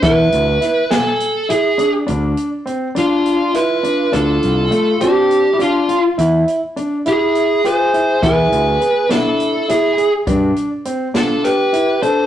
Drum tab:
HH |xxxxxxx|xxxxxxx|xxxxxxx|xxxxxxx|
SD |--oo---|-------|-------|-------|
BD |o------|-------|-------|-------|

HH |xxxxxxx|xxxxxxx|
SD |---o-o-|---oo--|
BD |o------|o------|